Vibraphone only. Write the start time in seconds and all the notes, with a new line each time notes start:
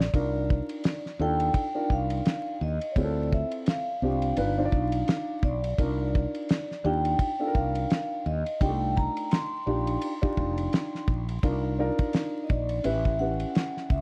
Already playing: D5
1.22 G5
1.92 F5
2.63 D#5
2.92 C#5
2.98 D5
3.33 E5
3.69 F5
5.45 D5
6.86 G5
7.56 F5
8.26 D#5
8.61 G5
8.97 A#5
9.32 C6
12.44 D#5
12.49 D5
12.85 E5
13.19 F#5
13.91 E5